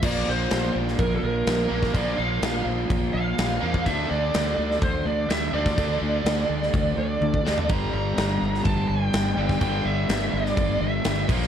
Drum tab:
CC |x---x---x---x---|x---x---x---x---|x---x---x---x---|x---x---x-------|
SD |----o--o----o--o|----o-------o---|----o--o----o--o|----o--o------o-|
T1 |----------------|----------------|----------------|------------o---|
FT |----------------|----------------|----------------|---------------o|
BD |o-------o------o|o-------o------o|o-------o------o|o-------o----o--|

CC |x---x---x---x---|x---x---x---x-x-|
SD |----o--o----o--o|----o--o----o--o|
T1 |----------------|----------------|
FT |----------------|----------------|
BD |o-------o------o|o-------o-----o-|